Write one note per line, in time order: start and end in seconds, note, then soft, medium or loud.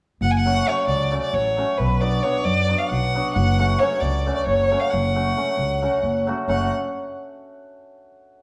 0.21 0.61 F#1 medium
0.21 0.32 F#5 medium
0.31 0.39 G#5 medium
0.37 0.70 F#5 loud
0.45 0.64 F#3 soft
0.45 0.57 A3 soft
0.45 0.58 C#4 soft
0.45 0.58 F#4 medium
0.65 1.10 F#3 soft
0.65 0.78 A3 soft
0.65 0.78 C#4 soft
0.65 0.79 F#4 medium
0.65 0.87 C#5 medium
0.87 1.15 C#2 medium
0.87 1.20 D5 medium
1.11 1.55 F#3 medium
1.11 1.24 A3 soft
1.11 1.24 C#4 soft
1.11 1.24 F#4 medium
1.22 1.35 D5 medium
1.33 1.60 A1 medium
1.33 1.80 C#5 medium
1.57 1.84 F#3 soft
1.57 1.70 A3 soft
1.57 1.70 C#4 medium
1.57 1.70 F#4 medium
1.78 2.19 B1 medium
1.78 2.02 B4 medium
2.01 2.22 F#3 medium
2.01 2.14 B3 medium
2.01 2.14 D4 soft
2.01 2.14 F#4 medium
2.01 2.24 D5 medium
2.23 2.67 F#3 medium
2.23 2.35 B3 medium
2.23 2.36 D4 soft
2.23 2.36 F#4 medium
2.23 2.46 C#5 medium
2.45 2.72 F#2 loud
2.45 2.80 D5 medium
2.68 3.13 F#3 medium
2.68 2.81 B3 soft
2.68 2.81 D4 soft
2.68 2.81 F#4 medium
2.78 2.90 F5 medium
2.89 3.18 B1 medium
2.89 3.33 F#5 medium
3.14 3.41 F#3 medium
3.14 3.27 B3 medium
3.14 3.27 D4 medium
3.14 3.27 F#4 medium
3.34 3.75 F#1 loud
3.34 3.81 F#5 medium
3.58 3.79 F#3 medium
3.58 3.71 A3 soft
3.58 3.71 C#4 soft
3.58 3.71 F#4 medium
3.79 4.25 F#3 medium
3.79 3.93 A3 medium
3.79 3.93 C#4 medium
3.79 3.94 F#4 medium
3.79 4.02 C#5 medium
4.01 4.29 C#2 medium
4.01 4.34 D5 medium
4.26 4.70 F#3 medium
4.26 4.38 A3 medium
4.26 4.39 C#4 soft
4.26 4.39 F#4 medium
4.35 4.46 D5 medium
4.46 4.74 F#1 medium
4.46 4.82 C#5 medium
4.71 4.98 F#3 medium
4.71 4.83 A3 medium
4.71 4.84 C#4 medium
4.71 4.84 F#4 medium
4.80 4.91 F5 medium
4.90 5.32 F#1 medium
4.90 6.26 F#5 medium
5.15 5.35 F#3 soft
5.15 5.27 A3 soft
5.15 5.27 C#4 soft
5.15 5.28 F#4 medium
5.36 5.81 F#3 soft
5.36 5.49 A3 medium
5.36 5.49 C#4 medium
5.36 5.50 F#4 medium
5.57 5.85 C#2 medium
5.82 6.26 F#3 medium
5.82 5.94 A3 soft
5.82 5.94 C#4 medium
5.82 5.95 F#4 medium
6.03 6.30 F#1 medium
6.27 6.47 F#3 medium
6.27 6.39 A3 medium
6.27 6.40 C#4 medium
6.27 6.40 F#4 medium
6.48 6.70 F#1 medium
6.48 6.70 F#3 medium
6.48 6.70 A3 medium
6.48 6.70 C#4 medium
6.48 6.70 F#4 medium
6.48 6.71 F#5 medium